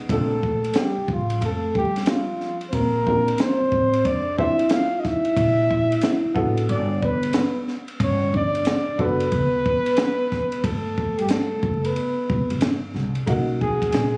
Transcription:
0.09 A#1 A3 C4 D4 F4 A4, kick, ride
0.43 kick
0.64 ride
0.74 G3 G4, snare, hi-hat pedal, ride
0.97 muted upright bass stroke
1.08 A1 F3 F4, kick
1.30 ride
1.41 F2 A3 A4, ride
1.74 G3 G4, kick
1.96 snare, ride
2.06 F3 F4, snare, hi-hat pedal, ride
2.40 snare
2.61 ride
2.69 A#1 C4 C5, kick, ride
2.74 A#3 A#4
3.06 C4 D4 F4 A#4, kick
3.28 ride
3.38 C4 C5, snare, hi-hat pedal, ride
3.60 muted upright bass stroke
3.72 A1, kick
3.93 ride
4.05 F2 D4 D5, kick, ride
4.38 C4 D4 E4 F4 C5 E5, kick
4.59 ride
4.69 F4 F5, snare, hi-hat pedal, ride
4.98 D#4 D#5
5.04 E4 E5, kick, snare
5.25 ride
5.37 A#1, kick, ride
5.71 kick
5.92 ride
6.01 snare, hi-hat pedal, ride
6.24 muted upright bass stroke
6.34 A1 B3 D4 F#4 A4, kick
6.57 ride
6.69 G1 D4 D5, ride
7.02 B3 B4, kick
7.23 ride
7.33 snare, hi-hat pedal, ride
7.68 snare
7.88 ride
8.00 G1 C#4 C#5, kick, ride
8.33 D4 D5, kick
8.55 ride
8.65 snare, hi-hat pedal, ride
8.87 muted upright bass stroke
8.98 F#1 B3 D4 F#4 A4 B4, kick
9.20 ride
9.32 D2, kick, ride
9.66 kick
9.86 ride
9.97 snare, hi-hat pedal, ride
10.31 kick, snare
10.52 ride
10.64 G1 A3 A4, kick, ride
10.98 kick
11.18 G3 G4, ride
11.29 A3 A4, snare, hi-hat pedal, ride
11.52 muted upright bass stroke
11.63 F#1, kick
11.83 B3 B4, ride
11.96 ride
12.30 E1, kick
12.50 F#1, ride
12.61 G1, snare, hi-hat pedal, ride
12.94 C2, snare
13.15 ride
13.26 B1 A#3 C#4 D#4 F#4, kick, ride
13.61 G#4 G#5, kick
13.82 kick, ride
13.92 A#1, snare, hi-hat pedal, ride

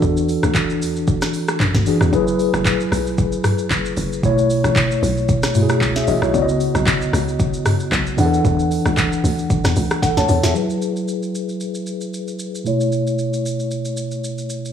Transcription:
Already playing: E3 D4 F#4 A4
0.02 E2, kick, shaker
0.17 shaker
0.29 open hi-hat, shaker
0.43 D2, cross-stick, shaker
0.55 kick, clap, shaker
0.70 shaker
0.81 E2, open hi-hat, shaker
0.96 shaker
1.07 kick, shaker
1.21 cross-stick, snare, shaker
1.33 open hi-hat, shaker
1.48 cross-stick, shaker
1.60 F#2, kick, clap, shaker
1.74 D2, kick, snare, mid tom, shaker
1.86 E3 D4 F#4 G#4, open hi-hat, shaker
2.01 E2, cross-stick, shaker
2.12 F#1 F#3 E4 G#4 B4, kick, shaker
2.27 shaker
2.39 open hi-hat, shaker
2.54 F#1, cross-stick, shaker
2.65 kick, clap, shaker
2.80 shaker
2.92 B1, cross-stick, open hi-hat, shaker
3.07 shaker
3.18 kick, shaker
3.32 shaker
3.44 cross-stick, mid tom, open hi-hat, shaker
3.58 shaker
3.71 F#1, kick, clap, shaker
3.85 shaker
3.97 F#1, open hi-hat, shaker
4.13 shaker
4.22 B1 B2 A3 E4 C#5, kick, shaker
4.38 shaker
4.50 open hi-hat, shaker
4.64 A1, cross-stick, shaker
4.76 kick, clap, shaker
4.91 shaker
5.02 B1, open hi-hat, shaker
5.17 shaker
5.29 kick, shaker
5.43 cross-stick, snare, shaker
5.55 B2 A3 E4 F#4, mid tom, open hi-hat, shaker
5.62 G#4
5.69 cross-stick, shaker
5.81 C#2, kick, clap, shaker
5.96 G#4 E5, snare, shaker
6.07 A1 F#4 D#5, open hi-hat, shaker
6.22 B1 E4 C#5, cross-stick, shaker
6.33 C#2 C#3 B3 F#4 D5, kick, shaker
6.42 D#5
6.49 shaker
6.60 open hi-hat, shaker
6.75 B1, cross-stick, shaker
6.86 kick, clap, shaker
7.02 shaker
7.13 C#2, cross-stick, open hi-hat, shaker
7.28 shaker
7.39 kick, shaker
7.54 shaker
7.66 cross-stick, mid tom, open hi-hat, shaker
7.80 shaker
7.92 B1, kick, clap, shaker
8.07 shaker
8.17 E2 E3 D4 G#4 F#5, open hi-hat, shaker
8.26 A4
8.34 shaker
8.45 E2, kick, shaker
8.59 shaker
8.71 open hi-hat, shaker
8.86 C#2, cross-stick, shaker
8.97 kick, clap, shaker
9.12 shaker
9.24 D2, open hi-hat, shaker
9.39 shaker
9.50 kick, shaker
9.64 E2, cross-stick, snare, shaker
9.76 C#2, open hi-hat, shaker
9.90 cross-stick, shaker
10.02 A4 F#5, kick, snare, shaker
10.17 D2 C#5 A5, snare, shaker
10.28 E2, open hi-hat, shaker
10.43 E2 G#4 E5, snare, shaker
10.54 F#3 E4 G#4 B4, shaker
10.70 shaker
10.82 shaker
10.96 shaker
11.08 shaker
11.23 shaker
11.35 shaker
11.49 shaker
11.60 shaker
11.74 shaker
11.86 shaker
12.01 shaker
12.14 shaker
12.28 shaker
12.39 shaker
12.55 shaker
12.64 B2 A3 E4 C#5, shaker
12.80 shaker
12.92 shaker
13.07 shaker
13.19 shaker
13.33 shaker
13.46 shaker
13.60 shaker
13.71 shaker
13.85 shaker
13.97 shaker
14.11 shaker
14.24 shaker
14.38 shaker
14.49 shaker
14.65 shaker

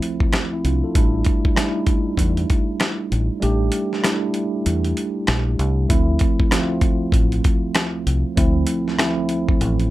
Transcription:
Already playing: D2 F3 A3 C4 E4
0.02 closed hi-hat
0.20 kick
0.33 cross-stick, snare, closed hi-hat
0.53 C4 E4
0.64 C2 D4 F4, closed hi-hat
0.84 F4 A4
0.94 A1 G3 A3 D4 E4, kick, closed hi-hat
1.25 kick, closed hi-hat
1.45 kick
1.55 G3 A3 D4 D#4, cross-stick, snare, closed hi-hat
1.65 E4
1.86 kick, closed hi-hat
2.17 E2, kick, closed hi-hat
2.37 closed hi-hat
2.50 kick, closed hi-hat
2.80 cross-stick, snare, closed hi-hat
3.12 A1, closed hi-hat
3.40 A1 G3 A3 D4 G4, closed hi-hat
3.72 closed hi-hat
3.93 snare
4.02 G3 A3 D4 E4, cross-stick, snare, closed hi-hat
4.34 closed hi-hat
4.66 E2, closed hi-hat
4.85 closed hi-hat
4.97 closed hi-hat
5.27 A#1, cross-stick, snare, closed hi-hat
5.59 C2, closed hi-hat
5.87 D2 F3 A3 C4 E4, kick, closed hi-hat
6.19 kick, closed hi-hat
6.40 kick
6.50 D2 F3 A3 C4 F4, cross-stick, snare, closed hi-hat
6.81 kick, closed hi-hat
7.12 A1, kick, closed hi-hat
7.32 closed hi-hat
7.44 kick, closed hi-hat
7.75 cross-stick, snare, closed hi-hat
8.06 C2, closed hi-hat
8.35 D2 F3 A3 C4 E4, kick, closed hi-hat
8.67 closed hi-hat
8.88 snare
8.97 D2 F3 A3 C4 E4, cross-stick, snare, closed hi-hat
9.29 closed hi-hat
9.49 kick
9.61 A1, closed hi-hat
9.80 closed hi-hat

